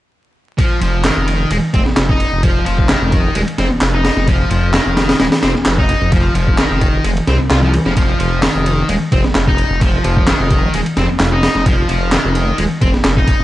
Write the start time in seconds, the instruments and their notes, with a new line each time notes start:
0.58 distorted electric guitar F3, kick, ride
0.81 detuned saw bass F1, distorted electric guitar F3, ride
1.04 distorted electric guitar D#3, snare, clap, open hi-hat
1.17 detuned saw bass F1
1.28 ride
1.51 detuned saw bass D#1, distorted electric guitar G#3, ride
1.74 detuned saw bass F1, distorted electric guitar C4, kick, ride
1.86 detuned saw bass F1, snare
1.97 detuned saw bass F1, snare, clap, ride
2.09 distorted electric guitar D#4, kick
2.20 ride
2.32 detuned saw bass F1
2.43 distorted electric guitar F3, kick, ride
2.66 detuned saw bass F1, distorted electric guitar F3, ride
2.78 kick
2.89 distorted electric guitar D#3, snare, clap, ride
3.02 detuned saw bass F1
3.12 kick, ride
3.35 detuned saw bass D#1, distorted electric guitar G#3, ride
3.48 ride
3.58 detuned saw bass F1, distorted electric guitar C4, snare, ride
3.71 detuned saw bass F1
3.81 detuned saw bass F1, snare, clap, open hi-hat
3.94 distorted electric guitar D#4
4.05 snare, open hi-hat
4.17 detuned saw bass F1, snare
4.28 distorted electric guitar F3, kick, ride
4.51 detuned saw bass F1, distorted electric guitar F3, ride
4.73 distorted electric guitar D#3, snare, clap, open hi-hat
4.86 detuned saw bass F1
4.97 snare, open hi-hat
5.09 snare, open hi-hat
5.20 detuned saw bass D#1, distorted electric guitar G#3, snare, open hi-hat
5.32 snare, open hi-hat
5.43 detuned saw bass F1, distorted electric guitar C4, snare, open hi-hat
5.55 detuned saw bass F1, snare
5.66 detuned saw bass F1, snare, clap, ride
5.78 distorted electric guitar D#4, kick
5.89 ride
6.01 detuned saw bass F1
6.12 distorted electric guitar F3, kick, ride
6.35 detuned saw bass F1, distorted electric guitar F3, ride
6.48 kick
6.58 distorted electric guitar D#3, snare, clap, ride
6.70 detuned saw bass F1
6.81 kick, ride
7.04 detuned saw bass F1, distorted electric guitar G#3, ride
7.17 ride
7.27 detuned saw bass C2, distorted electric guitar C4, snare, ride
7.40 detuned saw bass C2
7.50 detuned saw bass C2, distorted electric guitar F4, snare, clap, ride
7.63 distorted electric guitar F3
7.74 ride
7.86 detuned saw bass F1, distorted electric guitar F3, snare
7.97 distorted electric guitar F3, kick, ride
8.20 detuned saw bass F1, distorted electric guitar F3, ride
8.43 distorted electric guitar D#3, snare, clap, open hi-hat
8.55 detuned saw bass F1
8.66 ride
8.89 detuned saw bass D#1, distorted electric guitar G#3, ride
9.12 detuned saw bass F1, distorted electric guitar C4, kick, ride
9.24 detuned saw bass F1, snare
9.35 detuned saw bass F1, snare, clap, ride
9.47 distorted electric guitar D#4, kick
9.58 ride
9.71 detuned saw bass F1
9.81 distorted electric guitar F3, kick, ride
10.04 detuned saw bass F1, distorted electric guitar F3, ride
10.17 kick
10.27 distorted electric guitar D#3, snare, clap, ride
10.40 detuned saw bass F1
10.51 kick, ride
10.74 detuned saw bass D#1, distorted electric guitar G#3, ride
10.86 ride
10.97 detuned saw bass F1, distorted electric guitar C4, snare, ride
11.09 detuned saw bass F1
11.20 detuned saw bass F1, snare, clap, open hi-hat
11.32 distorted electric guitar D#4
11.43 snare, open hi-hat
11.55 detuned saw bass F1, snare
11.66 distorted electric guitar F3, kick, ride
11.89 detuned saw bass F1, distorted electric guitar F3, ride
12.12 distorted electric guitar D#3, snare, clap, open hi-hat
12.25 detuned saw bass F1
12.35 ride
12.58 detuned saw bass D#1, distorted electric guitar G#3, ride
12.81 detuned saw bass F1, distorted electric guitar C4, kick, ride
12.94 detuned saw bass F1, snare
13.04 detuned saw bass F1, snare, clap, ride
13.17 distorted electric guitar D#4, kick
13.28 kick, ride
13.40 detuned saw bass F1